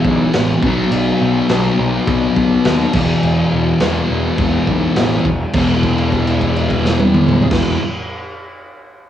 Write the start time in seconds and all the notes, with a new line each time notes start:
Already playing: E2 B2 E3
0.05 B1, kick
0.33 A1, snare, crash
0.62 B1 B2 F#3 B3, kick
0.91 B1, crash
1.21 B1
1.49 B1 B2 F#3 B3, snare, crash
1.79 B1
2.07 B1, kick, crash
2.36 B1, kick
2.65 D#2, snare, crash
2.93 E1 E2 B2, kick, crash
2.98 E3
3.23 E1, crash
3.53 E1
3.80 E1 E2 B2, snare, crash
3.85 E3
4.10 E1
4.38 E1, kick, crash
4.67 B1, kick
4.96 A1, snare, crash
5.25 E1, kick
5.53 E1 E2 B2 E3, kick, crash
5.83 kick, crash
5.98 crash
6.12 kick, crash
6.27 crash
6.41 kick, crash
6.56 crash
6.70 kick, crash
6.85 snare
7.00 high tom
7.14 mid tom
7.28 mid tom
7.42 floor tom
7.49 E1 E2 B2, kick, snare, crash
7.53 E3